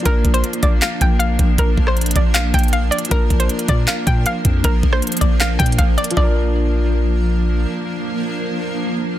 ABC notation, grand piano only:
X:1
M:4/4
L:1/8
Q:1/4=157
K:Bb
V:1 name="Grand piano"
[F,B,DB]8- | [F,B,DB]8 | [F,B,DB]8- | [F,B,DB]8 |
[F,DB]8- | [F,DB]8 |]